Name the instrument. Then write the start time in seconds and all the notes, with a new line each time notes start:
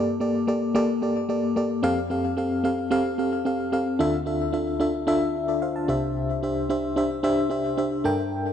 fm electric piano
Already playing: G2 A#3 G4 A4 D5
0.20 A#3 G4 A4 D5
0.47 A#3 G4 A4 D5
0.75 A#3 G4 A4 D5
1.02 A#3 G4 A4 D5
1.29 A#3 G4 A4 D5
1.56 A#3 G4 A4 D5
1.83 F2 C4 G4 A4 F5
2.10 C4 G4 A4 F5
2.37 C4 G4 A4 F5
2.64 C4 G4 A4 F5
2.91 C4 G4 A4 F5
3.18 C4 G4 A4 F5
3.45 C4 G4 A4 F5
3.72 C4 G4 A4 F5
3.99 D2 D3 D4 F4 A4 E5
4.26 D4 F4 A4 E5
4.53 D4 F4 A4 E5
4.80 D4 F4 A4 E5
5.07 D4 F4 A4 E5
5.48 A4 D5
5.62 C5 F5
5.76 E5 A5
5.88 C2 C3 D4 G4 C5 E5
6.43 D4 G4 C5 E5
6.69 D4 G4 C5 E5
6.96 D4 G4 C5 E5
7.23 D4 G4 C5 E5
7.50 D4 G4 C5 E5
7.77 D4 G4 C5 E5
8.04 G2 D4 A4 A#4 G5